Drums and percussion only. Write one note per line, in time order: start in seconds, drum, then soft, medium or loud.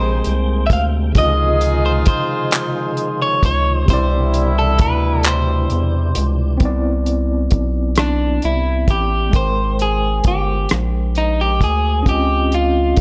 0.24 closed hi-hat soft
0.70 kick loud
0.70 closed hi-hat medium
1.15 kick loud
1.15 closed hi-hat medium
1.61 closed hi-hat medium
2.06 kick loud
2.06 closed hi-hat medium
2.51 clap loud
2.51 closed hi-hat medium
2.97 closed hi-hat soft
3.43 kick medium
3.43 closed hi-hat medium
3.88 kick loud
3.88 closed hi-hat medium
4.34 closed hi-hat medium
4.79 kick loud
4.79 closed hi-hat medium
5.23 clap loud
5.23 closed hi-hat medium
5.70 closed hi-hat soft
6.15 closed hi-hat medium
6.60 kick loud
6.60 closed hi-hat medium
7.06 closed hi-hat soft
7.51 kick medium
7.51 closed hi-hat medium
7.95 cross-stick loud
7.95 closed hi-hat medium
8.42 closed hi-hat soft
8.88 kick medium
8.88 closed hi-hat medium
9.33 kick loud
9.33 closed hi-hat medium
9.79 closed hi-hat medium
10.24 kick medium
10.24 closed hi-hat medium
10.69 cross-stick loud
10.69 closed hi-hat medium
11.15 closed hi-hat soft
11.61 kick medium
11.61 closed hi-hat medium
12.06 kick loud
12.06 closed hi-hat medium
12.52 closed hi-hat soft
12.97 kick medium
12.97 closed hi-hat medium